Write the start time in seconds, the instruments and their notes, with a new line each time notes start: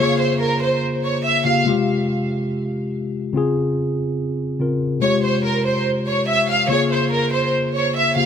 Already playing: tine electric piano C#3
0.00 tine electric piano A#3 F4 G#4, violin section C#5
0.20 violin section C5
0.41 violin section A#4
0.62 violin section C5
1.04 violin section C#5
1.25 violin section E5
1.45 tine electric piano C#3 A#3 F4 G4, violin section F5
1.64 tine electric piano C3 G#3 F4
1.69 tine electric piano G4
3.33 tine electric piano C#3 C4 F4
3.37 tine electric piano G#4
4.59 tine electric piano C#3 C4 F4 A#4
5.00 tine electric piano C3 G#3 F4, violin section C#5
5.05 tine electric piano G4
5.24 violin section C5
5.45 violin section A#4
5.66 violin section C5
6.07 violin section C#5
6.28 violin section E5
6.49 violin section F5
6.68 tine electric piano C#3 A#3 F4, violin section C#5
6.73 tine electric piano G#4
6.91 violin section C5
7.12 violin section A#4
7.33 violin section C5
7.75 violin section C#5
7.97 violin section E5
8.16 tine electric piano C#3 A#3 F4 G4, violin section F5